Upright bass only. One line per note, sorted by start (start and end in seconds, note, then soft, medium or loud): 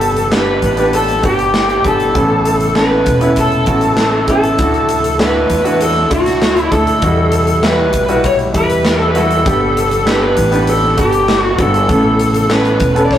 0.00 0.59 G1 medium
0.62 1.20 A1 medium
1.24 1.81 G1 medium
1.84 2.13 G1 medium
2.15 3.03 A1 medium
3.07 3.64 E1 medium
3.67 4.55 A1 medium
4.59 5.46 D2 medium
5.50 6.07 E2 medium
6.11 6.68 D2 medium
6.72 7.00 D2 medium
7.02 7.94 E2 medium
7.94 8.51 B1 medium
8.54 9.42 E2 medium
9.46 10.33 G1 medium
10.37 10.94 A1 medium
10.98 11.55 G1 medium
11.58 11.87 G1 medium
11.89 12.76 A1 medium
12.80 13.18 E1 medium